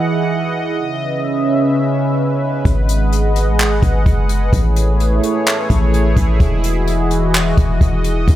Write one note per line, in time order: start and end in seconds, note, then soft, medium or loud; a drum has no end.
0.00 0.76 E3 medium
0.00 0.74 E4 medium
0.00 0.74 G#4 medium
0.00 2.61 D#5 medium
0.00 0.76 F#5 medium
0.78 2.63 C#3 medium
0.78 2.63 C#4 medium
0.78 6.36 B4 medium
0.78 2.63 E5 medium
2.65 3.49 G#1 loud
2.65 4.51 G#3 medium
2.65 4.51 G#4 medium
2.65 4.51 D#5 medium
2.65 4.51 F#5 medium
2.65 kick loud
2.65 closed hi-hat medium
2.89 closed hi-hat medium
3.12 closed hi-hat medium
3.36 closed hi-hat medium
3.47 3.66 A1 loud
3.59 clap loud
3.59 closed hi-hat medium
3.65 3.82 G#1 loud
3.82 4.05 G#1 loud
3.82 kick loud
3.82 closed hi-hat medium
4.06 4.51 F#1 loud
4.06 kick medium
4.06 closed hi-hat medium
4.29 closed hi-hat medium
4.53 5.20 A1 loud
4.53 6.38 A3 medium
4.53 8.24 E4 medium
4.53 8.24 G#4 medium
4.53 6.38 C#5 medium
4.53 kick loud
4.53 closed hi-hat medium
4.76 closed hi-hat medium
5.00 closed hi-hat medium
5.23 closed hi-hat medium
5.46 clap loud
5.46 closed hi-hat medium
5.70 6.15 A1 loud
5.70 kick loud
5.70 closed hi-hat medium
5.93 closed hi-hat medium
6.17 6.39 A1 loud
6.17 kick medium
6.17 closed hi-hat medium
6.40 7.53 E1 loud
6.40 8.26 E3 medium
6.40 8.26 F#4 medium
6.40 8.36 D#5 medium
6.40 kick loud
6.40 closed hi-hat medium
6.64 closed hi-hat medium
6.87 closed hi-hat medium
7.11 closed hi-hat medium
7.34 clap loud
7.34 closed hi-hat medium
7.57 7.80 E1 loud
7.57 kick loud
7.57 closed hi-hat medium
7.81 8.26 E1 loud
7.81 kick loud
7.81 closed hi-hat medium
8.04 closed hi-hat medium
8.28 8.36 C#2 loud
8.28 8.36 C#3 medium
8.28 8.36 C#4 medium
8.28 8.36 E4 medium
8.28 8.36 B4 medium
8.28 kick loud
8.28 closed hi-hat medium